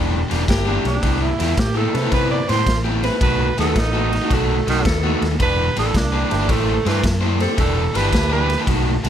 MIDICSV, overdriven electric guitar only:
0, 0, Header, 1, 3, 480
1, 0, Start_track
1, 0, Key_signature, 1, "minor"
1, 0, Tempo, 545951
1, 905, Time_signature, 4, 2, 24, 8
1, 7993, End_track
2, 0, Start_track
2, 0, Title_t, "Overdriven electric guitar"
2, 0, Program_c, 0, 29
2, 0, Note_on_c, 0, 52, 87
2, 0, Note_on_c, 0, 59, 93
2, 0, Note_on_c, 0, 62, 88
2, 0, Note_on_c, 0, 67, 98
2, 152, Note_off_c, 0, 52, 0
2, 154, Note_off_c, 0, 59, 0
2, 156, Note_off_c, 0, 62, 0
2, 158, Note_off_c, 0, 67, 0
2, 253, Note_on_c, 0, 52, 86
2, 258, Note_on_c, 0, 59, 86
2, 263, Note_on_c, 0, 62, 94
2, 267, Note_on_c, 0, 67, 90
2, 363, Note_off_c, 0, 52, 0
2, 365, Note_off_c, 0, 59, 0
2, 368, Note_off_c, 0, 62, 0
2, 370, Note_off_c, 0, 67, 0
2, 577, Note_on_c, 0, 67, 90
2, 578, Note_on_c, 0, 62, 86
2, 582, Note_on_c, 0, 59, 86
2, 583, Note_on_c, 0, 52, 74
2, 726, Note_off_c, 0, 52, 0
2, 726, Note_off_c, 0, 59, 0
2, 731, Note_off_c, 0, 62, 0
2, 732, Note_off_c, 0, 67, 0
2, 898, Note_on_c, 0, 48, 83
2, 901, Note_on_c, 0, 59, 97
2, 903, Note_on_c, 0, 64, 90
2, 905, Note_on_c, 0, 67, 96
2, 1112, Note_off_c, 0, 48, 0
2, 1113, Note_off_c, 0, 59, 0
2, 1114, Note_off_c, 0, 64, 0
2, 1115, Note_off_c, 0, 67, 0
2, 1219, Note_on_c, 0, 48, 80
2, 1226, Note_on_c, 0, 59, 77
2, 1228, Note_on_c, 0, 64, 90
2, 1230, Note_on_c, 0, 67, 92
2, 1325, Note_off_c, 0, 48, 0
2, 1329, Note_off_c, 0, 59, 0
2, 1330, Note_off_c, 0, 64, 0
2, 1331, Note_off_c, 0, 67, 0
2, 1535, Note_on_c, 0, 67, 85
2, 1539, Note_on_c, 0, 64, 96
2, 1546, Note_on_c, 0, 48, 74
2, 1547, Note_on_c, 0, 59, 83
2, 1689, Note_off_c, 0, 59, 0
2, 1691, Note_off_c, 0, 48, 0
2, 1696, Note_off_c, 0, 64, 0
2, 1696, Note_off_c, 0, 67, 0
2, 1776, Note_on_c, 0, 67, 80
2, 1780, Note_on_c, 0, 64, 81
2, 1786, Note_on_c, 0, 59, 65
2, 1788, Note_on_c, 0, 48, 62
2, 1841, Note_off_c, 0, 48, 0
2, 1848, Note_off_c, 0, 59, 0
2, 1850, Note_off_c, 0, 64, 0
2, 1851, Note_on_c, 0, 48, 90
2, 1856, Note_off_c, 0, 67, 0
2, 1858, Note_on_c, 0, 59, 88
2, 1860, Note_on_c, 0, 64, 99
2, 1866, Note_on_c, 0, 67, 96
2, 2068, Note_off_c, 0, 48, 0
2, 2072, Note_off_c, 0, 59, 0
2, 2073, Note_off_c, 0, 64, 0
2, 2076, Note_off_c, 0, 67, 0
2, 2181, Note_on_c, 0, 48, 90
2, 2184, Note_on_c, 0, 59, 89
2, 2189, Note_on_c, 0, 64, 86
2, 2191, Note_on_c, 0, 67, 87
2, 2286, Note_off_c, 0, 48, 0
2, 2288, Note_off_c, 0, 59, 0
2, 2290, Note_off_c, 0, 64, 0
2, 2291, Note_off_c, 0, 67, 0
2, 2501, Note_on_c, 0, 67, 100
2, 2509, Note_on_c, 0, 64, 91
2, 2513, Note_on_c, 0, 59, 86
2, 2514, Note_on_c, 0, 48, 76
2, 2654, Note_off_c, 0, 48, 0
2, 2654, Note_off_c, 0, 59, 0
2, 2658, Note_off_c, 0, 64, 0
2, 2661, Note_off_c, 0, 67, 0
2, 2819, Note_on_c, 0, 47, 88
2, 2819, Note_on_c, 0, 57, 93
2, 2822, Note_on_c, 0, 63, 94
2, 2828, Note_on_c, 0, 66, 106
2, 3032, Note_off_c, 0, 47, 0
2, 3032, Note_off_c, 0, 57, 0
2, 3034, Note_off_c, 0, 63, 0
2, 3037, Note_off_c, 0, 66, 0
2, 3143, Note_on_c, 0, 47, 82
2, 3144, Note_on_c, 0, 57, 90
2, 3149, Note_on_c, 0, 63, 83
2, 3154, Note_on_c, 0, 66, 85
2, 3248, Note_off_c, 0, 47, 0
2, 3248, Note_off_c, 0, 57, 0
2, 3250, Note_off_c, 0, 63, 0
2, 3253, Note_off_c, 0, 66, 0
2, 3457, Note_on_c, 0, 66, 95
2, 3464, Note_on_c, 0, 63, 89
2, 3468, Note_on_c, 0, 57, 81
2, 3473, Note_on_c, 0, 47, 80
2, 3617, Note_off_c, 0, 57, 0
2, 3620, Note_off_c, 0, 47, 0
2, 3621, Note_off_c, 0, 63, 0
2, 3624, Note_off_c, 0, 66, 0
2, 3707, Note_on_c, 0, 66, 90
2, 3712, Note_on_c, 0, 63, 73
2, 3714, Note_on_c, 0, 57, 72
2, 3716, Note_on_c, 0, 47, 75
2, 3774, Note_off_c, 0, 47, 0
2, 3780, Note_off_c, 0, 63, 0
2, 3781, Note_off_c, 0, 57, 0
2, 3783, Note_off_c, 0, 66, 0
2, 3784, Note_on_c, 0, 47, 91
2, 3791, Note_on_c, 0, 57, 97
2, 3791, Note_on_c, 0, 63, 93
2, 3794, Note_on_c, 0, 66, 113
2, 3995, Note_off_c, 0, 47, 0
2, 3998, Note_off_c, 0, 63, 0
2, 3999, Note_off_c, 0, 57, 0
2, 4000, Note_off_c, 0, 66, 0
2, 4102, Note_on_c, 0, 47, 82
2, 4108, Note_on_c, 0, 63, 88
2, 4110, Note_on_c, 0, 57, 90
2, 4113, Note_on_c, 0, 66, 95
2, 4207, Note_off_c, 0, 47, 0
2, 4210, Note_off_c, 0, 63, 0
2, 4211, Note_off_c, 0, 57, 0
2, 4213, Note_off_c, 0, 66, 0
2, 4426, Note_on_c, 0, 66, 100
2, 4429, Note_on_c, 0, 63, 102
2, 4431, Note_on_c, 0, 57, 91
2, 4436, Note_on_c, 0, 47, 80
2, 4577, Note_off_c, 0, 47, 0
2, 4581, Note_off_c, 0, 57, 0
2, 4582, Note_off_c, 0, 63, 0
2, 4586, Note_off_c, 0, 66, 0
2, 4742, Note_on_c, 0, 52, 90
2, 4746, Note_on_c, 0, 62, 105
2, 4750, Note_on_c, 0, 67, 103
2, 4754, Note_on_c, 0, 71, 101
2, 4954, Note_off_c, 0, 52, 0
2, 4956, Note_off_c, 0, 62, 0
2, 4958, Note_off_c, 0, 67, 0
2, 4960, Note_off_c, 0, 71, 0
2, 5066, Note_on_c, 0, 52, 85
2, 5070, Note_on_c, 0, 62, 87
2, 5073, Note_on_c, 0, 67, 100
2, 5077, Note_on_c, 0, 71, 87
2, 5169, Note_off_c, 0, 52, 0
2, 5172, Note_off_c, 0, 62, 0
2, 5173, Note_off_c, 0, 67, 0
2, 5175, Note_off_c, 0, 71, 0
2, 5386, Note_on_c, 0, 71, 105
2, 5390, Note_on_c, 0, 67, 103
2, 5392, Note_on_c, 0, 62, 87
2, 5394, Note_on_c, 0, 52, 74
2, 5539, Note_off_c, 0, 52, 0
2, 5544, Note_off_c, 0, 62, 0
2, 5545, Note_off_c, 0, 67, 0
2, 5546, Note_off_c, 0, 71, 0
2, 5623, Note_on_c, 0, 67, 79
2, 5623, Note_on_c, 0, 71, 89
2, 5632, Note_on_c, 0, 52, 70
2, 5633, Note_on_c, 0, 62, 68
2, 5692, Note_off_c, 0, 67, 0
2, 5695, Note_off_c, 0, 62, 0
2, 5696, Note_on_c, 0, 57, 89
2, 5699, Note_on_c, 0, 64, 100
2, 5702, Note_on_c, 0, 67, 96
2, 5703, Note_off_c, 0, 71, 0
2, 5707, Note_on_c, 0, 72, 104
2, 5708, Note_off_c, 0, 52, 0
2, 5911, Note_off_c, 0, 57, 0
2, 5913, Note_off_c, 0, 64, 0
2, 5915, Note_off_c, 0, 67, 0
2, 5917, Note_off_c, 0, 72, 0
2, 6027, Note_on_c, 0, 57, 83
2, 6028, Note_on_c, 0, 64, 78
2, 6035, Note_on_c, 0, 67, 92
2, 6035, Note_on_c, 0, 72, 97
2, 6130, Note_off_c, 0, 57, 0
2, 6131, Note_off_c, 0, 64, 0
2, 6134, Note_off_c, 0, 67, 0
2, 6134, Note_off_c, 0, 72, 0
2, 6339, Note_on_c, 0, 72, 101
2, 6341, Note_on_c, 0, 67, 96
2, 6344, Note_on_c, 0, 64, 92
2, 6348, Note_on_c, 0, 57, 83
2, 6489, Note_off_c, 0, 57, 0
2, 6493, Note_off_c, 0, 64, 0
2, 6493, Note_off_c, 0, 67, 0
2, 6494, Note_off_c, 0, 72, 0
2, 6656, Note_on_c, 0, 52, 79
2, 6659, Note_on_c, 0, 62, 98
2, 6661, Note_on_c, 0, 67, 96
2, 6665, Note_on_c, 0, 71, 93
2, 6872, Note_off_c, 0, 52, 0
2, 6873, Note_off_c, 0, 62, 0
2, 6874, Note_off_c, 0, 67, 0
2, 6876, Note_off_c, 0, 71, 0
2, 6980, Note_on_c, 0, 52, 87
2, 6984, Note_on_c, 0, 62, 83
2, 6985, Note_on_c, 0, 67, 85
2, 6990, Note_on_c, 0, 71, 96
2, 7087, Note_off_c, 0, 52, 0
2, 7089, Note_off_c, 0, 62, 0
2, 7090, Note_off_c, 0, 67, 0
2, 7092, Note_off_c, 0, 71, 0
2, 7297, Note_on_c, 0, 71, 97
2, 7303, Note_on_c, 0, 67, 97
2, 7309, Note_on_c, 0, 62, 88
2, 7311, Note_on_c, 0, 52, 93
2, 7453, Note_off_c, 0, 52, 0
2, 7457, Note_off_c, 0, 62, 0
2, 7458, Note_off_c, 0, 67, 0
2, 7458, Note_off_c, 0, 71, 0
2, 7544, Note_on_c, 0, 71, 86
2, 7548, Note_on_c, 0, 67, 73
2, 7552, Note_on_c, 0, 62, 65
2, 7555, Note_on_c, 0, 52, 72
2, 7613, Note_on_c, 0, 47, 93
2, 7618, Note_off_c, 0, 62, 0
2, 7619, Note_on_c, 0, 57, 99
2, 7622, Note_off_c, 0, 67, 0
2, 7622, Note_on_c, 0, 63, 98
2, 7625, Note_off_c, 0, 71, 0
2, 7626, Note_on_c, 0, 66, 103
2, 7630, Note_off_c, 0, 52, 0
2, 7831, Note_off_c, 0, 47, 0
2, 7834, Note_off_c, 0, 57, 0
2, 7835, Note_off_c, 0, 63, 0
2, 7837, Note_off_c, 0, 66, 0
2, 7941, Note_on_c, 0, 47, 85
2, 7943, Note_on_c, 0, 57, 93
2, 7946, Note_on_c, 0, 63, 95
2, 7949, Note_on_c, 0, 66, 90
2, 7993, Note_off_c, 0, 47, 0
2, 7993, Note_off_c, 0, 57, 0
2, 7993, Note_off_c, 0, 63, 0
2, 7993, Note_off_c, 0, 66, 0
2, 7993, End_track
3, 0, Start_track
3, 0, Title_t, "Muted overdriven electric guitar strokes"
3, 737, Note_on_c, 9, 29, 52
3, 814, Note_off_c, 9, 29, 0
3, 814, Note_on_c, 9, 29, 49
3, 902, Note_off_c, 9, 29, 0
3, 1700, Note_on_c, 9, 29, 45
3, 1788, Note_off_c, 9, 29, 0
3, 2664, Note_on_c, 9, 29, 56
3, 2743, Note_off_c, 9, 29, 0
3, 2743, Note_on_c, 9, 29, 58
3, 2831, Note_off_c, 9, 29, 0
3, 3628, Note_on_c, 9, 29, 52
3, 3715, Note_off_c, 9, 29, 0
3, 4588, Note_on_c, 9, 29, 53
3, 4673, Note_off_c, 9, 29, 0
3, 4673, Note_on_c, 9, 29, 55
3, 4761, Note_off_c, 9, 29, 0
3, 5549, Note_on_c, 9, 29, 50
3, 5637, Note_off_c, 9, 29, 0
3, 6499, Note_on_c, 9, 29, 47
3, 6581, Note_off_c, 9, 29, 0
3, 6581, Note_on_c, 9, 29, 61
3, 6669, Note_off_c, 9, 29, 0
3, 7464, Note_on_c, 9, 29, 49
3, 7552, Note_off_c, 9, 29, 0
3, 7993, End_track
0, 0, End_of_file